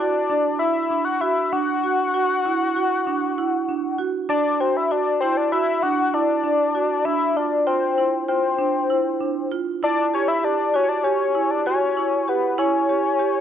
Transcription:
Already playing: analog synth lead D5 A5
0.00 marimba F#4
0.30 marimba D4
0.59 marimba E4, analog synth lead E5 B5
0.90 marimba D4
1.05 analog synth lead F#5 C#6
1.21 marimba F#4, analog synth lead E5 B5
1.52 marimba D4, analog synth lead F#5 C#6
1.84 marimba F#4
2.14 marimba F#4
2.46 marimba E4
2.76 marimba F#4
3.07 marimba D4
3.38 marimba E4
3.68 marimba D4
3.98 marimba F#4
4.29 marimba D4, analog synth lead D5 A5
4.60 marimba F#4, analog synth lead C5 G5
4.76 analog synth lead E5 B5
4.91 marimba F#4, analog synth lead D5 A5
5.20 marimba E4, analog synth lead C5 G5
5.37 analog synth lead D5 A5
5.52 marimba F#4, analog synth lead E5 B5
5.82 marimba D4, analog synth lead F#5 C#6
6.14 marimba E4, analog synth lead D5 A5
6.44 marimba D4
6.75 marimba F#4
7.05 marimba D4, analog synth lead E5 B5
7.36 marimba F4, analog synth lead D5 A5
7.67 marimba F4, analog synth lead C5 G5
7.98 marimba E4
8.28 marimba F4, analog synth lead C5 G5
8.58 marimba D4
8.90 marimba E4
9.21 marimba D4
9.52 marimba F4
9.83 marimba E4, analog synth lead D5 A5
10.14 marimba G4, analog synth lead C#5 G#5
10.28 analog synth lead E5 B5
10.43 marimba G4, analog synth lead D5 A5
10.74 marimba F#4, analog synth lead C#5 G#5
10.89 analog synth lead D5 A5
11.04 marimba G4, analog synth lead C#5 G#5
11.35 marimba E4
11.51 analog synth lead D5 A5
11.66 marimba F#4, analog synth lead C#5 G#5
11.97 marimba E4
12.28 marimba G4, analog synth lead B4 F#5
12.58 marimba E4, analog synth lead C#5 G#5
12.89 marimba G4
13.19 marimba G4

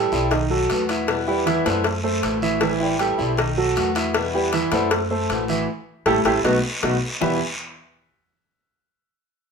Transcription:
Already playing: steel-string acoustic guitar E3 G3 C4 E4, grand piano G3 G4 A4
0.12 upright bass B1, steel-string acoustic guitar G3 C4 E4, short guiro
0.31 grand piano D#3 D#4 D#5, muted steel-string acoustic guitar stroke, cowbell, long guiro
0.50 grand piano F#3 F#4 A4
0.69 upright bass E2, steel-string acoustic guitar D#3 A3 B3 F#4, cowbell, short guiro
0.89 grand piano E4 E5, cowbell, short guiro
1.07 steel-string acoustic guitar B2 E3 G3 B3 E4, cowbell, long guiro
1.27 steel-string acoustic guitar E3 G3 B3 E4, grand piano G3 G4 B4
1.46 grand piano E3 E4 E5, steel-string acoustic guitar E3 G3 B3 E4, cowbell, short guiro
1.65 upright bass F#2, steel-string acoustic guitar E3 G3 B3 E4, grand piano A3 A4 C5, cowbell, short guiro
1.84 muted steel-string acoustic guitar stroke, cowbell, long guiro
2.03 grand piano A3 A4 C5
2.23 upright bass A1, steel-string acoustic guitar E3 A3 E4 F#4, cowbell, short guiro
2.42 grand piano E3 E4 E5, short guiro
2.61 steel-string acoustic guitar E3 G3 C4 E4, grand piano E3 E4 E5, cowbell, long guiro
2.80 steel-string acoustic guitar G3 C4 E4
2.99 steel-string acoustic guitar E3 G3 C4 E4, grand piano G3 G4 A4, cowbell, short guiro
3.18 upright bass B1, steel-string acoustic guitar G3 C4 E4, short guiro
3.37 grand piano D#3 D#4 D#5, muted steel-string acoustic guitar stroke, cowbell, long guiro
3.57 grand piano F#3 F#4 A4
3.75 upright bass E2, steel-string acoustic guitar D#3 A3 B3 F#4, cowbell, short guiro
3.95 grand piano E4 E5, cowbell, short guiro
4.14 steel-string acoustic guitar B2 E3 G3 B3 E4, cowbell, long guiro
4.34 steel-string acoustic guitar E3 G3 B3 E4, grand piano G3 G4 B4
4.53 steel-string acoustic guitar E3 G3 B3, grand piano E3 E4 E5, cowbell, short guiro
4.72 upright bass F#2, steel-string acoustic guitar E3 G3 B3 E4, grand piano A3 A4 C5, cowbell, short guiro
4.91 muted steel-string acoustic guitar stroke, cowbell, long guiro
5.11 grand piano A3 A4 C5
5.29 upright bass A1, steel-string acoustic guitar E3 A3 E4 F#4, cowbell, short guiro
5.48 grand piano E3 E4 E5, short guiro
6.06 upright bass A1, steel-string acoustic guitar G3 A3 C4, grand piano E4 G4 A4, cowbell, long guiro
6.25 upright bass A1, steel-string acoustic guitar G3 A3 C4, grand piano E4 G4 A4, cowbell, long guiro
6.44 upright bass B1, steel-string acoustic guitar F#3 A3 B3, grand piano B3 D#4 F#4, cowbell, long guiro
6.82 upright bass B1, steel-string acoustic guitar F#3 A3 B3, grand piano B3 D#4 F#4, cowbell, long guiro
7.20 steel-string acoustic guitar E2 B2 E3 G3 B3 E4, upright bass E2, grand piano E3 B3 E4 G4 B4 E5, low bongo, long guiro

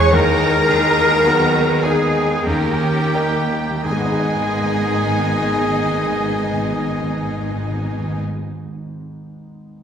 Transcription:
Already playing: grand piano E2 C#4 G#4, double bass section E2, trombone section E3 G#3, viola section G#3 C#4, cello section G#4, french horn section G#4, violin section C#5 C#6, flute section C#5, clarinet C#5, oboe C#5
0.12 grand piano D#2, double bass section D#2, french horn section B3, viola section D#4, violin section A#4 A#5, clarinet A#4, flute section A#4, cello section A#4, oboe A#4
0.68 grand piano D#3, viola section D#4, cello section G#4
1.24 trombone section D#3, viola section F#3, grand piano B3, cello section F#4
1.83 viola section G#3, grand piano D#4, flute section G#4, clarinet G#4, violin section G#4 G#5, oboe G#4, cello section G#4
2.44 double bass section D#2, grand piano D#2, viola section A#3 C#4, trombone section A#3, french horn section C#4 D#4, violin section G4 G5, flute section G4, oboe G4, clarinet G4, cello section A#4
2.57 timpani D#3
2.69 timpani D#3
2.80 timpani D#3
2.91 timpani D#3
3.14 timpani D#3, grand piano D#4 A#4
3.26 timpani D#3
3.37 timpani D#3
3.60 timpani D#3
3.71 timpani D#3
3.83 double bass section G#1, grand piano G#2, cello section G#2, timpani G#2, trombone section D#3 G#3, viola section B3 D#4, french horn section B3 D#4, oboe G#4, clarinet G#4, violin section D#5 G#5, flute section G#5
3.91 timpani G#2, grand piano G#3
3.98 timpani G#2, grand piano B3
4.05 timpani G#2, grand piano D#4
4.12 timpani G#2, grand piano G#4
4.19 timpani G#2, grand piano D#5
4.27 timpani G#2
4.33 timpani G#2
4.40 timpani G#2
4.47 timpani G#2
4.55 timpani G#2
4.61 timpani G#2
4.68 timpani G#2
4.75 timpani G#2
4.82 timpani G#2
4.89 timpani G#2
4.96 timpani G#2
5.02 timpani G#2
5.09 timpani G#2
5.15 timpani G#2
5.22 timpani G#2
5.29 timpani G#2
5.35 timpani G#2
5.42 timpani G#2
5.49 timpani G#2
5.56 timpani G#2
5.63 timpani G#2
5.70 timpani G#2
5.77 timpani G#2
5.84 timpani G#2
5.91 timpani G#2
5.98 timpani G#2
6.05 timpani G#2
6.12 timpani G#2
6.18 timpani G#2
6.25 timpani G#2
6.33 timpani G#2
6.39 timpani G#2
6.46 timpani G#2
6.53 timpani G#2
6.60 timpani G#2
6.67 timpani G#2
6.74 timpani G#2
6.80 timpani G#2
6.87 timpani G#2
6.95 timpani G#2
7.02 timpani G#2
7.08 timpani G#2
7.15 timpani G#2
7.22 timpani G#2
7.30 timpani G#2
7.37 timpani G#2
7.44 timpani G#2
7.51 timpani G#2
7.58 timpani G#2
7.65 timpani G#2
7.71 timpani G#2
7.79 timpani G#2
7.85 timpani G#2
7.92 timpani G#2
7.99 timpani G#2
8.06 timpani G#2
8.13 timpani G#2
8.20 timpani G#2

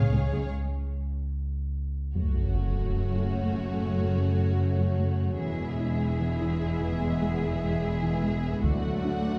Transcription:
Already playing: sub bass C#2, french horn section G#3 G#4, analog synth pad G#3 C#4 G#4 C#5, violin section G#4 C#5 F5
0.12 double bass section C#2, cello section C#2, viola section G#3 C#4, synth arpeggio sound G#3
0.32 cello section C#2, viola section G#3, synth arpeggio sound G#3
2.15 double bass section F#1, cello section F#2, synth arpeggio sound F#3, analog synth pad A3 C#4 F#4 C#5, viola section A3, violin section F#4 C#5, taiko, sub drop
2.56 synth arpeggio sound F#4
2.96 synth arpeggio sound F#3
3.16 synth arpeggio sound F#4
3.56 synth arpeggio sound F#3
3.77 synth arpeggio sound A3
3.98 synth arpeggio sound A3
4.18 synth arpeggio sound F#3
4.38 synth arpeggio sound A3
4.79 synth arpeggio sound F#3
4.99 synth arpeggio sound A3
5.39 double bass section E1, cello section E2, synth arpeggio sound E3, analog synth pad G#3 B3 E4 E5, viola section G#3, violin section G#4 E5
5.80 synth arpeggio sound E4
6.20 synth arpeggio sound E3
6.41 synth arpeggio sound E4
6.81 synth arpeggio sound E3
7.02 synth arpeggio sound G#3
7.22 synth arpeggio sound G#3
7.42 synth arpeggio sound E3
7.63 synth arpeggio sound G#3
8.03 synth arpeggio sound E3
8.23 synth arpeggio sound G#3
8.63 cello section D2, double bass section D2, synth arpeggio sound D3, analog synth pad F#3 A3 F#4 D5, viola section A3, violin section F#4 F#5, taiko
9.05 synth arpeggio sound D4

